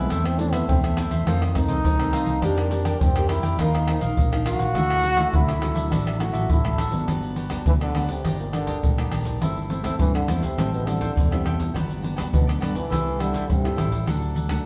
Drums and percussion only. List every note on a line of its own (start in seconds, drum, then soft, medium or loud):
0.10 pandeiro medium
0.10 tamborim medium
0.10 shaker medium
0.10 surdo medium
0.25 pandeiro soft
0.25 tamborim medium
0.25 shaker soft
0.39 pandeiro medium
0.53 pandeiro medium
0.53 tamborim medium
0.53 shaker medium
0.69 pandeiro medium
0.69 shaker medium
0.69 surdo loud
0.84 pandeiro soft
0.84 tamborim medium
0.84 shaker soft
0.97 pandeiro medium
0.97 tamborim medium
1.11 pandeiro medium
1.11 shaker medium
1.27 pandeiro medium
1.27 tamborim medium
1.27 shaker medium
1.27 surdo medium
1.42 pandeiro soft
1.42 tamborim medium
1.42 shaker soft
1.55 pandeiro medium
1.55 tamborim medium
1.55 surdo medium
1.68 pandeiro medium
1.68 shaker medium
1.85 pandeiro medium
1.85 shaker medium
1.85 surdo medium
1.99 pandeiro soft
1.99 tamborim medium
1.99 shaker soft
2.13 pandeiro medium
2.13 tamborim medium
2.13 shaker medium
2.26 pandeiro medium
2.26 shaker medium
2.42 pandeiro medium
2.42 tamborim medium
2.42 shaker medium
2.42 surdo medium
2.58 pandeiro soft
2.58 tamborim medium
2.58 shaker soft
2.71 pandeiro medium
2.85 pandeiro medium
2.85 tamborim medium
2.85 shaker medium
3.01 pandeiro medium
3.01 shaker medium
3.01 surdo loud
3.16 pandeiro soft
3.16 tamborim medium
3.16 shaker soft
3.29 pandeiro medium
3.29 tamborim medium
3.43 pandeiro medium
3.43 shaker medium
3.59 pandeiro medium
3.59 tamborim medium
3.59 shaker medium
3.59 surdo medium
3.75 pandeiro soft
3.75 tamborim medium
3.75 shaker soft
3.88 pandeiro medium
3.88 tamborim medium
4.01 pandeiro medium
4.01 shaker medium
4.17 pandeiro medium
4.17 shaker medium
4.17 surdo medium
4.33 pandeiro soft
4.33 tamborim medium
4.33 shaker soft
4.46 pandeiro medium
4.46 tamborim medium
4.46 shaker medium
4.59 pandeiro medium
4.59 shaker medium
4.75 pandeiro medium
4.75 tamborim medium
4.75 shaker medium
4.75 surdo medium
4.90 pandeiro soft
4.90 tamborim medium
4.90 shaker soft
5.03 pandeiro medium
5.03 shaker medium
5.17 pandeiro medium
5.17 tamborim medium
5.17 shaker medium
5.33 pandeiro medium
5.33 shaker medium
5.33 surdo loud
5.49 pandeiro soft
5.49 tamborim medium
5.49 shaker soft
5.62 pandeiro medium
5.62 tamborim loud
5.76 pandeiro medium
5.76 shaker medium
5.92 pandeiro medium
5.92 tamborim medium
5.92 shaker medium
5.92 surdo medium
6.07 pandeiro soft
6.07 tamborim medium
6.07 shaker soft
6.20 pandeiro medium
6.20 tamborim medium
6.20 shaker medium
6.34 pandeiro medium
6.34 shaker medium
6.50 pandeiro medium
6.50 shaker medium
6.50 surdo medium
6.65 pandeiro soft
6.65 tamborim medium
6.65 shaker soft
6.78 pandeiro medium
6.78 tamborim medium
6.78 shaker medium
6.92 pandeiro medium
6.92 shaker medium
7.08 pandeiro medium
7.08 tamborim medium
7.08 shaker medium
7.08 surdo soft
7.23 pandeiro soft
7.23 shaker soft
7.36 pandeiro medium
7.36 shaker medium
7.50 pandeiro medium
7.50 tamborim medium
7.50 shaker medium
7.50 surdo soft
7.66 pandeiro medium
7.66 shaker medium
7.66 surdo loud
7.81 pandeiro soft
7.81 tamborim medium
7.81 shaker soft
7.95 pandeiro medium
7.95 tamborim medium
8.09 pandeiro medium
8.09 shaker medium
8.09 surdo soft
8.25 pandeiro medium
8.25 tamborim medium
8.25 shaker medium
8.25 surdo medium
8.40 pandeiro soft
8.40 shaker soft
8.53 pandeiro medium
8.53 tamborim medium
8.53 shaker medium
8.67 pandeiro medium
8.67 shaker medium
8.67 surdo soft
8.83 pandeiro medium
8.83 shaker medium
8.83 surdo medium
8.98 pandeiro soft
8.98 tamborim medium
8.98 shaker soft
9.12 pandeiro medium
9.12 tamborim medium
9.25 pandeiro medium
9.25 shaker medium
9.25 surdo soft
9.42 pandeiro medium
9.42 tamborim medium
9.42 shaker medium
9.42 surdo medium
9.57 pandeiro soft
9.57 shaker soft
9.70 pandeiro medium
9.84 pandeiro medium
9.84 tamborim medium
9.84 shaker medium
9.84 surdo soft
9.99 pandeiro medium
9.99 shaker medium
9.99 surdo medium
10.15 pandeiro soft
10.15 tamborim medium
10.15 shaker soft
10.28 pandeiro medium
10.28 tamborim medium
10.28 surdo soft
10.43 pandeiro medium
10.43 shaker medium
10.43 surdo soft
10.58 pandeiro medium
10.58 tamborim medium
10.58 shaker medium
10.58 surdo medium
10.74 pandeiro soft
10.74 shaker soft
10.87 pandeiro medium
10.87 tamborim medium
11.01 pandeiro medium
11.01 shaker medium
11.01 surdo soft
11.17 pandeiro medium
11.17 shaker medium
11.17 surdo loud
11.32 pandeiro soft
11.32 tamborim medium
11.32 shaker soft
11.46 pandeiro medium
11.46 tamborim medium
11.60 pandeiro medium
11.60 shaker medium
11.60 surdo soft
11.76 pandeiro medium
11.76 tamborim medium
11.76 shaker medium
11.76 surdo soft
11.90 pandeiro soft
11.90 shaker soft
12.04 pandeiro medium
12.04 shaker medium
12.18 pandeiro medium
12.18 tamborim medium
12.18 shaker medium
12.18 surdo soft
12.34 pandeiro medium
12.34 shaker medium
12.34 surdo loud
12.49 pandeiro soft
12.49 tamborim medium
12.49 shaker soft
12.62 pandeiro medium
12.62 tamborim medium
12.62 shaker medium
12.62 surdo soft
12.75 pandeiro medium
12.75 shaker medium
12.75 surdo soft
12.92 pandeiro medium
12.92 tamborim medium
12.92 shaker medium
12.92 surdo medium
13.07 pandeiro soft
13.07 shaker soft
13.20 pandeiro medium
13.20 tamborim medium
13.34 pandeiro medium
13.34 shaker medium
13.34 surdo soft
13.50 pandeiro medium
13.50 shaker medium
13.50 surdo medium
13.65 pandeiro soft
13.65 tamborim medium
13.65 shaker soft
13.78 pandeiro medium
13.78 tamborim medium
13.92 pandeiro medium
13.92 shaker medium
13.92 surdo soft
14.07 pandeiro medium
14.07 tamborim medium
14.07 shaker medium
14.07 surdo soft
14.22 pandeiro soft
14.22 shaker soft
14.36 pandeiro medium
14.49 pandeiro medium
14.49 tamborim medium
14.49 shaker medium
14.49 surdo soft